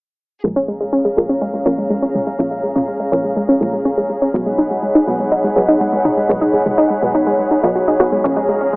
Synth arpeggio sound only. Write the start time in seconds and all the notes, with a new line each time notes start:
0.44 G#3
0.56 C#4
0.68 G#3
0.80 G#3
0.93 C#4
1.05 G#3
1.17 G#3
1.29 C#4
1.41 G#3
1.54 G#3
1.66 C#4
1.78 G#3
1.90 G#3
2.02 C#4
2.14 G#3
2.27 G#3
2.39 C#4
2.51 G#3
2.63 G#3
2.76 C#4
2.88 G#3
3.00 G#3
3.12 C#4
3.24 G#3
3.36 G#3
3.49 C#4
3.61 G#3
3.73 G#3
3.85 C#4
3.97 G#3
4.09 G#3
4.22 C#4
4.34 G#3
4.46 G#3
4.58 D#4
4.71 G#3
4.83 G#3
4.95 D#4
5.07 G#3
5.19 G#3
5.32 D#4
5.44 G#3
5.56 G#3
5.68 D#4
5.80 G#3
5.93 G#3
6.05 D#4
6.17 G#3
6.29 G#3
6.41 D#4
6.53 G#3
6.66 G#3
6.78 D#4
6.90 G#3
7.02 G#3
7.15 D#4
7.27 G#3
7.39 G#3
7.51 D#4
7.63 D#5
7.75 F#4
7.88 D#4
8.00 F#4
8.12 G#3
8.24 C#4
8.36 G#3
8.49 G#3
8.61 C#4
8.73 G#3